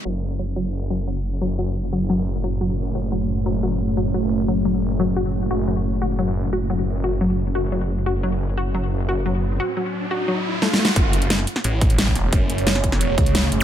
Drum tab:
HH |------------------------------------------------|------------------------------------------------|------------------------------------------------|------------------------------------------------|
SD |------------------------------------------------|------------------------------------------------|------------------------------------------------|------------------------------------------------|
BD |------------------------------------------------|------------------------------------------------|------------------------------------------------|------------------------------------------------|

HH |------------------------------------------------|------------------------------------------------|------------------------------------------------|------------------------------------------------|
SD |------------------------------------------------|------------------------------------------------|------------------------------------------------|------------------------------------o---o---o---|
BD |------------------------------------------------|------------------------------------------------|------------------------------------------------|------------------------------------------------|

HH |x-----x--x--x-----x-----x-----x--x--x-----x-----|x-----x--x--x-----x-----x-----x--x--x-----x-----|
SD |------------o--o-----o--------------o-----o-----|------------o--o-----o--------------o-----------|
BD |o-----------------------------o--------o--------|o-----------------o-----------o-----------------|